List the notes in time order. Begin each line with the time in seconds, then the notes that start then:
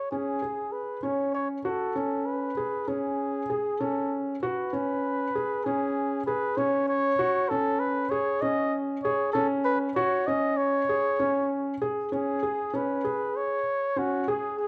0.11 C#4 G#4
0.42 G#4
0.72 B4
1.03 C#4 C#5
1.34 C#5
1.65 F#4 A4
1.96 C#4
2.26 B4
2.57 G#4
2.88 C#4 G#4
3.50 G#4
3.80 C#4 A4
4.42 F#4 B4
4.73 C#4
5.35 G#4
5.64 C#4 G#4
6.26 G#4 B4
6.57 C#4 C#5
6.88 C#5
7.19 F#4
7.49 C#4 A4
7.80 B4
8.10 G#4 C#5
8.42 C#4 D#5
9.03 G#4 C#5
9.33 C#4 A4
9.65 B4
9.96 F#4 C#5
10.27 C#4 D#5
10.57 C#5
10.89 G#4
11.20 C#4
11.82 G#4
12.12 C#4 G#4
12.43 G#4
12.74 C#4 B4
13.05 G#4
13.37 C#5
13.96 C#4 F#4
14.28 G#4
14.59 G#4